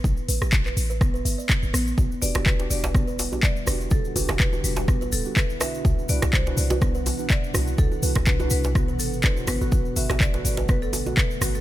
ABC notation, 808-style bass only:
X:1
M:4/4
L:1/16
Q:"Swing 16ths" 1/4=124
K:Em
V:1 name="808-style bass" clef=bass
A,,, z A,,, A,,,3 A,,,4 G,,, z2 G,,, A,,,2 | E,,, z E,,, E,,,3 E,,,4- E,,, z3 E,,,2 | E,,, z E,,, E,,,3 E,,,4 D,,, z4 z | C,, z C,, C,,3 C,,4- C,, z3 C,,2 |
C,, z C,, C,,3 C,,4 G,,,4 G,,, G,,, | G,,, z G,,, G,,,3 G,,,4- G,,, z3 G,,,2 |]